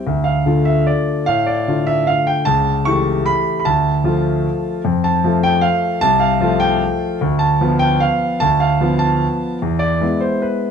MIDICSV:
0, 0, Header, 1, 2, 480
1, 0, Start_track
1, 0, Tempo, 402955
1, 73, Time_signature, 3, 2, 24, 8
1, 2477, Tempo, 393443
1, 7757, Tempo, 403497
1, 12873, End_track
2, 0, Start_track
2, 0, Title_t, "Grand piano"
2, 0, Program_c, 0, 0
2, 78, Note_on_c, 0, 38, 59
2, 277, Control_c, 0, 64, 127
2, 286, Note_on_c, 0, 77, 67
2, 539, Note_off_c, 0, 38, 0
2, 547, Note_on_c, 0, 50, 43
2, 548, Note_on_c, 0, 57, 42
2, 562, Note_on_c, 0, 65, 48
2, 777, Note_on_c, 0, 76, 74
2, 788, Note_off_c, 0, 77, 0
2, 1028, Note_off_c, 0, 76, 0
2, 1032, Note_on_c, 0, 74, 67
2, 1047, Control_c, 0, 64, 0
2, 1464, Note_off_c, 0, 50, 0
2, 1464, Note_off_c, 0, 57, 0
2, 1471, Note_off_c, 0, 65, 0
2, 1504, Note_on_c, 0, 77, 85
2, 1510, Note_off_c, 0, 74, 0
2, 1514, Note_on_c, 0, 45, 61
2, 1744, Note_on_c, 0, 74, 65
2, 1747, Note_off_c, 0, 77, 0
2, 1776, Control_c, 0, 64, 127
2, 1981, Note_off_c, 0, 45, 0
2, 2002, Note_on_c, 0, 50, 45
2, 2004, Note_on_c, 0, 57, 45
2, 2006, Note_on_c, 0, 65, 49
2, 2223, Note_on_c, 0, 76, 83
2, 2232, Note_off_c, 0, 74, 0
2, 2466, Note_on_c, 0, 77, 81
2, 2470, Note_off_c, 0, 76, 0
2, 2493, Control_c, 0, 64, 0
2, 2708, Note_on_c, 0, 79, 75
2, 2711, Note_off_c, 0, 77, 0
2, 2903, Note_off_c, 0, 50, 0
2, 2904, Note_off_c, 0, 57, 0
2, 2905, Note_off_c, 0, 65, 0
2, 2932, Note_on_c, 0, 81, 93
2, 2943, Note_on_c, 0, 37, 63
2, 2944, Note_off_c, 0, 79, 0
2, 3176, Control_c, 0, 64, 127
2, 3417, Note_off_c, 0, 37, 0
2, 3421, Note_on_c, 0, 85, 86
2, 3426, Note_off_c, 0, 81, 0
2, 3439, Note_on_c, 0, 52, 46
2, 3443, Note_on_c, 0, 57, 48
2, 3448, Note_on_c, 0, 67, 55
2, 3913, Note_on_c, 0, 83, 82
2, 3916, Note_off_c, 0, 85, 0
2, 3937, Control_c, 0, 64, 0
2, 4309, Note_off_c, 0, 83, 0
2, 4327, Note_on_c, 0, 83, 61
2, 4359, Note_off_c, 0, 52, 0
2, 4361, Note_off_c, 0, 57, 0
2, 4364, Note_off_c, 0, 67, 0
2, 4395, Note_on_c, 0, 81, 90
2, 4403, Note_on_c, 0, 38, 61
2, 4407, Note_off_c, 0, 83, 0
2, 4652, Control_c, 0, 64, 127
2, 4860, Note_off_c, 0, 38, 0
2, 4870, Note_on_c, 0, 53, 48
2, 4880, Note_on_c, 0, 57, 47
2, 4880, Note_on_c, 0, 65, 58
2, 5375, Control_c, 0, 64, 0
2, 5805, Note_off_c, 0, 53, 0
2, 5810, Note_off_c, 0, 57, 0
2, 5810, Note_off_c, 0, 65, 0
2, 5852, Note_off_c, 0, 81, 0
2, 5853, Note_on_c, 0, 41, 65
2, 6066, Control_c, 0, 64, 127
2, 6089, Note_on_c, 0, 81, 81
2, 6321, Note_off_c, 0, 41, 0
2, 6334, Note_on_c, 0, 53, 53
2, 6341, Note_on_c, 0, 57, 52
2, 6342, Note_on_c, 0, 65, 51
2, 6570, Note_on_c, 0, 79, 95
2, 6572, Note_off_c, 0, 81, 0
2, 6788, Note_on_c, 0, 77, 79
2, 6809, Note_off_c, 0, 79, 0
2, 6828, Control_c, 0, 64, 0
2, 7227, Note_off_c, 0, 53, 0
2, 7230, Note_off_c, 0, 57, 0
2, 7231, Note_off_c, 0, 65, 0
2, 7265, Note_off_c, 0, 77, 0
2, 7275, Note_on_c, 0, 81, 111
2, 7286, Note_on_c, 0, 36, 72
2, 7500, Note_on_c, 0, 77, 72
2, 7511, Note_off_c, 0, 81, 0
2, 7511, Control_c, 0, 64, 127
2, 7746, Note_off_c, 0, 36, 0
2, 7753, Note_on_c, 0, 53, 54
2, 7763, Note_on_c, 0, 57, 53
2, 7765, Note_on_c, 0, 65, 59
2, 7983, Note_on_c, 0, 79, 89
2, 7995, Note_off_c, 0, 77, 0
2, 8261, Control_c, 0, 64, 0
2, 8669, Note_off_c, 0, 53, 0
2, 8673, Note_off_c, 0, 57, 0
2, 8674, Note_off_c, 0, 65, 0
2, 8709, Note_off_c, 0, 79, 0
2, 8715, Note_on_c, 0, 38, 66
2, 8925, Note_on_c, 0, 81, 86
2, 8960, Control_c, 0, 64, 127
2, 9174, Note_off_c, 0, 38, 0
2, 9187, Note_on_c, 0, 53, 51
2, 9190, Note_on_c, 0, 59, 54
2, 9196, Note_on_c, 0, 65, 56
2, 9405, Note_on_c, 0, 79, 93
2, 9415, Note_off_c, 0, 81, 0
2, 9655, Note_on_c, 0, 77, 79
2, 9659, Note_off_c, 0, 79, 0
2, 9683, Control_c, 0, 64, 0
2, 10097, Note_off_c, 0, 53, 0
2, 10098, Note_off_c, 0, 59, 0
2, 10101, Note_off_c, 0, 65, 0
2, 10129, Note_on_c, 0, 81, 101
2, 10138, Note_off_c, 0, 77, 0
2, 10143, Note_on_c, 0, 38, 65
2, 10367, Note_on_c, 0, 77, 75
2, 10370, Note_off_c, 0, 81, 0
2, 10379, Control_c, 0, 64, 127
2, 10600, Note_off_c, 0, 38, 0
2, 10613, Note_on_c, 0, 53, 49
2, 10616, Note_on_c, 0, 59, 50
2, 10617, Note_on_c, 0, 65, 51
2, 10828, Note_on_c, 0, 81, 90
2, 10851, Note_off_c, 0, 77, 0
2, 11117, Control_c, 0, 64, 0
2, 11525, Note_off_c, 0, 53, 0
2, 11527, Note_off_c, 0, 59, 0
2, 11527, Note_off_c, 0, 65, 0
2, 11560, Note_off_c, 0, 81, 0
2, 11581, Note_on_c, 0, 40, 66
2, 11783, Note_on_c, 0, 74, 78
2, 11802, Control_c, 0, 64, 127
2, 12041, Note_off_c, 0, 40, 0
2, 12043, Note_on_c, 0, 56, 47
2, 12047, Note_on_c, 0, 59, 43
2, 12053, Note_on_c, 0, 64, 51
2, 12068, Control_c, 0, 64, 0
2, 12275, Note_on_c, 0, 72, 64
2, 12286, Note_off_c, 0, 74, 0
2, 12531, Note_on_c, 0, 71, 65
2, 12537, Note_off_c, 0, 72, 0
2, 12873, Note_off_c, 0, 56, 0
2, 12873, Note_off_c, 0, 59, 0
2, 12873, Note_off_c, 0, 64, 0
2, 12873, Note_off_c, 0, 71, 0
2, 12873, End_track
0, 0, End_of_file